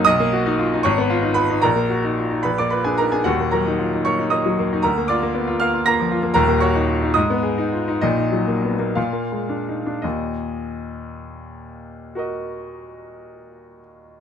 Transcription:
<<
  \new Staff \with { instrumentName = "Grand piano" } { \time 6/8 \key ees \minor \tempo 4. = 74 << { <dis'' dis'''>4. <des'' des'''>4 <ces'' ces'''>8 | <bes' bes''>4. <ces'' ces'''>16 <d'' d'''>16 <ces'' ces'''>16 <aes' aes''>16 <bes' bes''>16 <aes' aes''>16 | <ges' ges''>8 <bes' bes''>4 <des'' des'''>8 <ees'' ees'''>4 | <bes' bes''>8 <d'' d'''>4 <f'' f'''>8 <bes'' bes'''>4 |
<bes' bes''>8 <des'' des'''>4 <ees'' ees'''>4. | <ees' ees''>4. <f' f''>4. | ees''2.~ | ees''2. | } \\ { r2. | r2. | r2. | r2. |
r2. | r2. | r2. | <ges' bes' ees''>2. | } >> }
  \new Staff \with { instrumentName = "Grand piano" } { \time 6/8 \key ees \minor b,,16 ais16 fis'16 dis'16 f'16 dis'16 aes,,16 ces'16 f'16 ees'16 f'16 ees'16 | bes,,16 bes16 ges'16 ees'16 f'16 ees'16 bes,,16 bes16 f'16 d'16 ees'16 d'16 | <ees,, ees,>16 bes16 ges16 ees'16 f'16 ees'16 bes16 ees'16 bes16 ges16 bes16 ees'16 | d,16 bes16 f'16 bes16 ces'16 f'16 bes16 f'16 bes16 f16 f'16 bes16 |
<ees,, ees,>16 bes16 ges'16 ees'16 f'16 ees'16 aes,16 ces'16 aes'16 ees'16 f'16 ees'16 | <bes,, bes,>16 ees'16 ges16 bes16 ces'16 bes16 bes,16 bes16 aes16 d'16 ees'16 d'16 | <ees, bes,>2.~ | <ees, bes,>2. | }
>>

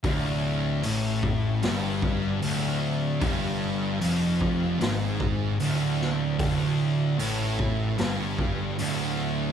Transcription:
<<
  \new Staff \with { instrumentName = "Distorted electric guitar" } { \clef bass \time 4/4 \key d \minor \tempo 4 = 75 d,4 a,4 g,4 d,4 | g,4 f,4 gis,4 d,4 | d,4 a,4 g,4 d,4 | }
  \new Staff \with { instrumentName = "Distorted electric guitar" } { \clef bass \time 4/4 \key d \minor d,4 a,4 g,4 d,4 | g,4 f,4 gis,4 d,4 | d,4 a,4 g,4 d,4 | }
  \new Staff \with { instrumentName = "Distorted electric guitar" } { \clef bass \time 4/4 \key d \minor d,4 a,4 g,4 d,4 | g,4 f,4 gis,4 d,4 | d,4 a,4 g,4 d,4 | }
  \new Staff \with { instrumentName = "Picked electric bass" } { \clef bass \time 4/4 \key d \minor d,,4 a,,4 g,,4 d,,4 | g,,4 f,,4 gis,,4 d,,4 | d,,4 a,,4 g,,4 d,,4 | }
  \new DrumStaff \with { instrumentName = "Drums" } \drummode { \time 4/4 <hho bd>4 hho8 bd8 <hho sn>8 bd8 hho4 | <hho bd>4 hho8 bd8 <hho sn>8 bd8 hho8 sn8 | <hho bd>4 hho8 bd8 <hho sn>8 bd8 hho4 | }
>>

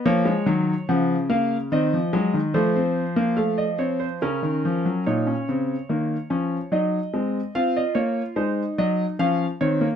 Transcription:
<<
  \new Staff \with { instrumentName = "Grand piano" } { \time 3/4 \key bes \phrygian \tempo 4 = 72 << { des''4 ges''8 f''8 ees''4 | c''4 f''16 ees''16 des''16 c''16 bes'4 | des''2 ees''4 | f''16 ees''16 des''8 c''8 ees''8 f''8 des''8 | } \\ { bes16 aes16 ges8 f8 bes8 c'8 aes8 | a16 c'8 bes16 a8 c'8 des'4 | ees'16 des'16 c'8 bes8 des'8 ees'8 c'8 | f'4 ees'4 des'8 c'16 bes16 | } >> }
  \new Staff \with { instrumentName = "Grand piano" } { \clef bass \time 3/4 \key bes \phrygian f8 ees8 des4 ees16 f16 ges16 ees16 | f2 des16 ees16 f16 ges16 | bes,8 des8 ees8 f8 ges8 aes8 | c'8 bes8 aes8 ges8 f8 ees8 | }
>>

